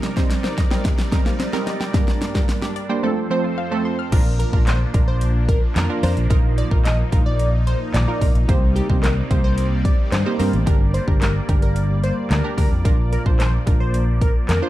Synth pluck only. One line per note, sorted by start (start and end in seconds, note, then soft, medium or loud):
0.16 0.51 G3 medium
0.16 0.51 C4 medium
0.16 0.51 D#4 medium
0.16 0.51 C5 loud
0.71 0.97 G3 medium
0.71 0.97 C4 medium
0.71 0.97 D#4 medium
0.71 0.97 A#4 medium
1.12 1.38 G3 medium
1.12 1.38 C4 medium
1.12 1.38 D#4 medium
1.12 1.38 A#4 loud
1.53 1.79 G3 medium
1.53 1.79 C4 medium
1.53 1.79 D#4 medium
1.53 1.79 A#4 loud
1.94 2.20 G3 medium
1.94 2.20 A#3 medium
1.94 2.20 D4 medium
1.94 2.20 A#4 loud
2.35 2.69 G3 medium
2.35 2.69 A#3 medium
2.35 2.70 D4 medium
2.35 2.70 A#4 medium
2.89 3.03 G3 medium
2.89 3.03 A#3 medium
2.89 3.03 D4 medium
2.89 3.03 C5 medium
3.03 3.25 F3 medium
3.03 3.25 A3 medium
3.03 3.25 C4 medium
3.03 3.25 A4 loud
3.30 3.56 F3 medium
3.30 3.56 A3 medium
3.30 3.57 C4 medium
3.30 3.57 C5 loud
3.71 3.97 F3 medium
3.71 3.97 A3 medium
3.71 3.97 C4 medium
3.71 3.98 A4 loud
4.12 4.38 D4 medium
4.12 4.38 F4 medium
4.12 4.38 A#4 loud
4.53 4.79 D4 medium
4.53 4.79 F4 medium
4.53 4.79 A#4 medium
4.94 5.54 D4 medium
4.94 5.55 F4 medium
4.94 5.55 A#4 medium
5.89 5.98 D4 medium
5.89 5.98 F4 medium
5.89 5.98 A#4 medium
6.03 6.20 D4 medium
6.03 6.20 F4 medium
6.03 6.21 A#4 medium
6.30 6.56 D#4 loud
6.30 6.56 F4 medium
6.30 6.56 A#4 loud
6.71 6.97 D#4 medium
6.71 6.97 F4 medium
6.71 6.98 A#4 medium
7.12 7.73 D#4 medium
7.12 7.73 F4 medium
7.12 7.73 A#4 medium
8.08 8.16 D#4 medium
8.08 8.17 F4 medium
8.08 8.17 A#4 medium
8.21 8.39 D#4 medium
8.21 8.39 F4 medium
8.21 8.39 A#4 medium
8.48 8.74 A#3 loud
8.48 8.75 C4 medium
8.48 8.75 D#4 medium
8.48 8.75 G4 medium
8.48 8.75 C5 loud
8.90 9.16 A#3 medium
8.90 9.16 C4 medium
8.90 9.16 D#4 medium
8.90 9.16 G4 medium
8.90 9.16 C5 medium
9.30 9.91 A#3 medium
9.30 9.91 C4 medium
9.30 9.91 D#4 medium
9.30 9.91 G4 medium
9.30 9.91 C5 medium
10.26 10.35 A#3 medium
10.26 10.35 C4 medium
10.26 10.35 D#4 medium
10.26 10.35 G4 medium
10.26 10.35 C5 medium
10.39 10.57 A#3 medium
10.39 10.57 C4 medium
10.39 10.57 D#4 medium
10.39 10.57 G4 medium
10.39 10.57 C5 medium
10.66 10.93 D4 loud
10.66 10.93 G4 medium
10.66 10.93 A#4 loud
11.07 11.34 D4 medium
11.07 11.34 G4 medium
11.07 11.34 A#4 medium
11.49 12.09 D4 medium
11.49 12.09 G4 medium
11.49 12.09 A#4 medium
12.44 12.53 D4 medium
12.44 12.53 G4 medium
12.44 12.53 A#4 medium
12.57 12.75 D4 medium
12.57 12.75 G4 medium
12.57 12.75 A#4 medium
12.85 13.11 D4 medium
12.85 13.11 F4 medium
12.85 13.11 A#4 loud
13.26 13.52 D4 medium
13.26 13.52 F4 medium
13.26 13.52 C5 medium
13.67 14.27 D4 medium
13.67 14.27 F4 medium
13.67 14.27 A#4 medium
14.62 14.69 D4 medium
14.62 14.69 F4 medium
14.62 14.69 C5 medium